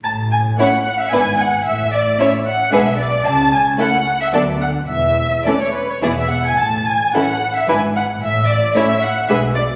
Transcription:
X:1
M:3/4
L:1/16
Q:1/4=111
K:A
V:1 name="Violin section"
a2 g2 f3 e g2 f2 | e2 d2 e2 f2 e2 d2 | a2 g2 f3 e d2 f2 | e4 d c B c d e f g |
a2 g2 f3 e g2 f2 | e2 d2 e2 f2 e2 d2 |]
V:2 name="Violin section"
z4 [Ec]4 [EB]4 | z4 [Ec]4 [GB]4 | z4 [EA]4 [DA]4 | z4 [CA]4 [EG]4 |
z4 [EA]4 [EB]4 | z4 [Ec]4 [GB]4 |]
V:3 name="Viola section"
z4 [A,C]4 [B,D]4 | z4 [A,C]4 [G,D]4 | z4 [A,C]4 [F,B,]4 | z4 [E,A,]4 [E,B,]4 |
z4 [E,C]4 [E,D]4 | z4 [A,C]4 [G,D]4 |]
V:4 name="Cello section" clef=bass
A,,4 z4 G,,4 | A,,4 z4 B,,4 | C,4 z4 D,4 | E,,4 z4 E,,4 |
A,,4 z4 G,,4 | A,,4 z4 B,,4 |]
V:5 name="Double bass section" clef=bass
A,,,4 z4 G,,,4 | A,,,4 z4 B,,,4 | C,,4 z4 D,,4 | E,,,4 z4 E,,,4 |
A,,,4 z4 G,,,4 | A,,,4 z4 B,,,4 |]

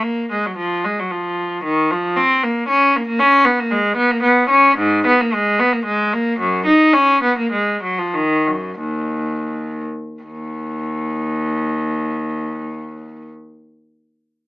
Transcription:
X:1
M:3/4
L:1/16
Q:1/4=109
K:Bbm
V:1 name="Cello"
B,2 A, G, F,2 A, G, F,4 | E,2 F,2 C2 B,2 D2 B, B, | [K:Ebm] D2 C B, A,2 C B, C2 D2 | A,,2 C B, A,2 C B, A,2 B,2 |
G,,2 E2 D2 C B, A,2 G, F, | E,2 G,,2 E,,6 z2 | E,,12- | E,,12 |]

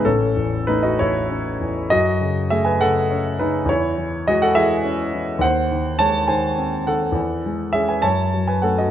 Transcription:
X:1
M:6/8
L:1/16
Q:3/8=68
K:C#m
V:1 name="Grand piano"
[CA]4 [DB] [Fd] [Ec]6 | [Fd]4 [Ge] [Bg] [Af]4 [DB]2 | [Ec]4 [Fd] [Af] [Ge]6 | [^Bf]4 [ca]2 [Bg]4 [Af]2- |
[Af]4 [Ge] [Bg] [ca]3 [Bg] [Af] [Fd] |]
V:2 name="Grand piano" clef=bass
A,,,2 E,,2 A,2 E,,2 C2 E,,2 | F,,2 C,2 A,2 C,2 C2 C,2 | E,,2 E,2 G,2 E,2 C2 E,2 | D,,2 D,2 G,2 D,2 ^B,2 D,2 |
E,,2 G,2 [G,C]2 F,,2 F,2 [A,C]2 |]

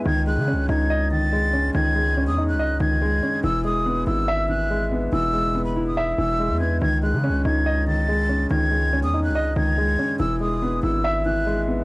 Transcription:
X:1
M:4/4
L:1/16
Q:1/4=142
K:C#m
V:1 name="Flute"
g'2 f'4 g'4 a'6 | g'4- g' d'2 f'3 g'6 | e'2 d'4 e'4 f'6 | e'4- e' b2 d'3 e'4 g'2 |
g'2 f'4 g'4 a'6 | g'4- g' d'2 f'3 g'6 | e'2 d'4 e'4 f'6 |]
V:2 name="Grand piano"
D,2 G,2 C2 D2 d2 D,2 G,2 C2 | D,2 G,2 C2 D2 d2 D,2 G,2 C2 | E,2 G,2 B,2 E2 e2 E,2 G,2 B,2 | E,2 G,2 B,2 E2 e2 E,2 G,2 B,2 |
D,2 G,2 C2 D2 d2 D,2 G,2 C2 | D,2 G,2 C2 D2 d2 D,2 G,2 C2 | E,2 G,2 B,2 E2 e2 E,2 G,2 B,2 |]
V:3 name="808-style bass" clef=bass
C,,3 C,3/2 C,,3/2 C,,8- C,,2 | C,,4- C,, E,,2- E,,/2 C,,2- C,,/2 C,,4 z2 | E,,,6 G,,,8- G,,,2 | E,,,8- E,,,2 E,,,3 E,,3 |
C,,3 C,3/2 C,,3/2 C,,8- C,,2 | C,,4- C,, E,,2- E,,/2 C,,2- C,,/2 C,,4 z2 | E,,,6 G,,,8- G,,,2 |]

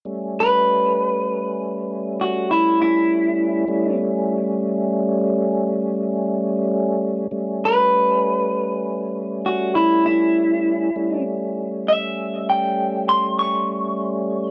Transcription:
X:1
M:12/8
L:1/8
Q:3/8=66
K:Amix
V:1 name="Clean electric guitar"
z B6 F E E3- | E z8 z3 | z B6 F E E3- | E z2 e2 g2 =c' ^c'4 |]
V:2 name="Tonewheel organ"
[G,A,C]12 | [G,A,C]12 | [G,A,C]12 | [G,A,C]12 |]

